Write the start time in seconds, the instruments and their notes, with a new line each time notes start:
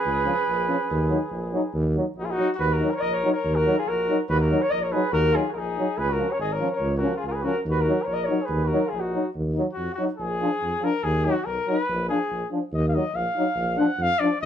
Already playing: trumpet G#4, flugelhorn B4
0.05 tuba C#2
0.25 euphonium F3, french horn C#4
0.48 tuba A#1
0.68 euphonium F3, french horn C#4
0.90 tuba D#2
1.09 euphonium F#3, french horn D#4
1.31 tuba A#1
1.53 euphonium F#3, french horn D#4
1.74 tuba D#2
1.96 euphonium F#3, french horn D#4
2.16 tuba A#1, trumpet D#4, flugelhorn F#4
2.23 trumpet F4, flugelhorn G#4
2.30 trumpet D#4, flugelhorn F#4
2.38 euphonium F#3, french horn D#4
2.55 trumpet F#4
2.59 tuba D#2, flugelhorn B4
2.68 trumpet F#4
2.73 flugelhorn A#4
2.80 euphonium F#3, french horn D#4
2.90 trumpet A#4, flugelhorn C#5
2.95 trumpet A#4, flugelhorn C#5
3.00 tuba A#1, flugelhorn D#5
3.11 trumpet A#4, flugelhorn C#5
3.23 euphonium F#3, french horn D#4
3.33 trumpet A#4, flugelhorn C#5
3.44 tuba D#2
3.54 trumpet F#4, flugelhorn A#4
3.66 euphonium F#3, french horn D#4
3.78 trumpet F4, flugelhorn G#4
3.87 tuba A#1, trumpet F#4, flugelhorn A#4
4.08 euphonium F#3, french horn D#4
4.29 tuba D#2, trumpet F#4, flugelhorn B4
4.40 trumpet F#4, flugelhorn A#4
4.50 euphonium F#3, french horn D#4
4.61 trumpet A#4, flugelhorn C#5
4.70 tuba A#1, trumpet A#4, flugelhorn D#5
4.82 trumpet A#4, flugelhorn C#5
4.92 euphonium F#3, french horn D#4, trumpet G#4, flugelhorn B4
5.12 tuba D#2, trumpet F#4, flugelhorn A#4
5.33 euphonium F#3, french horn D#4, trumpet F4, flugelhorn G#4
5.48 trumpet F#4
5.52 tuba A#1, trumpet D#4, flugelhorn A#4
5.58 flugelhorn G#4
5.77 euphonium F#3, french horn D#4
5.98 tuba C#2, trumpet G#4, flugelhorn B4
6.10 trumpet F#4, flugelhorn A#4
6.18 euphonium F3, french horn C#4
6.30 trumpet A#4, flugelhorn C#5
6.38 tuba G#1, trumpet G#4, flugelhorn D#5
6.53 trumpet A#4, flugelhorn C#5
6.60 euphonium F3, french horn C#4
6.71 trumpet A#4, flugelhorn C#5
6.80 tuba C#2
6.97 french horn C#4, trumpet F#4, flugelhorn A#4
7.04 euphonium F3
7.16 trumpet F4, flugelhorn G#4
7.23 tuba C#2, trumpet F4
7.28 flugelhorn A#4
7.32 trumpet G#4, flugelhorn B4
7.42 euphonium F3, french horn C#4, trumpet F#4, flugelhorn A#4
7.65 tuba D#2, trumpet F#4
7.71 flugelhorn B4
7.81 trumpet F#4, flugelhorn A#4
7.85 euphonium F#3, french horn D#4
8.02 trumpet A#4, flugelhorn C#5
8.07 tuba A#1, trumpet A#4
8.13 flugelhorn D#5
8.23 trumpet A#4, flugelhorn C#5
8.28 euphonium F#3, french horn D#4
8.42 trumpet G#4, flugelhorn B4
8.49 tuba D#2
8.65 trumpet F#4, flugelhorn A#4
8.71 euphonium F#3, french horn D#4
8.87 trumpet F4, flugelhorn G#4
8.92 tuba A#1, trumpet D#4
8.99 flugelhorn F#4
9.13 euphonium F#3, french horn D#4
9.35 tuba D#2
9.54 euphonium F#3, french horn D#4
9.73 tuba F2, trumpet F#4
9.94 french horn D#4, trumpet F#4
9.98 euphonium F#3
10.17 tuba A#1, trumpet G#4
10.41 euphonium F3, french horn D4
10.62 tuba F2
10.81 euphonium F3, french horn D4, trumpet A#4
11.04 tuba D#2, trumpet G#4
11.25 euphonium F#3, french horn D#4, trumpet F#4
11.46 tuba B1, trumpet A#4
11.67 euphonium F#3, french horn D#4, trumpet B4
11.89 tuba A#1
12.09 euphonium F3, french horn D4, trumpet G#4
12.32 tuba A#1
12.51 euphonium F3, french horn D4
12.72 tuba D#2, trumpet D#5
12.88 trumpet F5
12.92 euphonium F#3, french horn D#4, trumpet D#5
13.14 tuba A#1, trumpet F5
13.36 euphonium F#3, french horn D#4
13.55 tuba A#1
13.77 euphonium F3, french horn D4, trumpet F#5
13.98 tuba F2
14.02 trumpet F5
14.20 euphonium F3, french horn D4, trumpet D5
14.42 tuba D#2, trumpet D#5